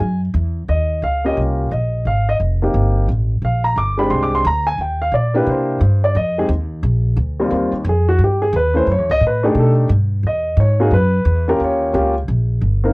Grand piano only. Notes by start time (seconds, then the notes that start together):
Already playing: G#5
0.69 D#5
1.04 F5
1.24 A#3 C#4 F4 G4 D#5
1.72 D#5
2.07 F5
2.29 D#5
2.62 A#3 C4 D#4 G4
3.45 F5
3.64 A#5
3.78 D6
3.98 G#3 C4 D4 G4 B5
4.10 C6
4.23 D6
4.35 C6
4.47 A#5
4.67 G#5
4.81 G5
5.02 F5
5.14 D5
5.34 A#3 D4 E4 G4 B4
5.49 C5
6.04 D5
6.16 D#5
6.38 G#3 C4 D#4 G4 G#4
7.40 D#2 G3 A#3 C4 F4
7.52 G3 A#3 C4 F4
7.89 G#4
8.09 F#4
8.24 G4
8.42 G#4
8.56 B4
8.74 A3 C#4 E4 B4 C5
8.92 C#5
9.11 D#5
9.27 B4
9.43 A3 D4 D#4 G4 G#4
9.60 A4
10.27 D#5
10.60 C#5
10.80 A#3 D#4 F#4 G#4
10.94 B4
11.48 A#3 C#4 F4 G4 A#4
11.64 C#5
11.93 A#3 C#4 F4 G4
12.84 A#3 C4 D#4 A#4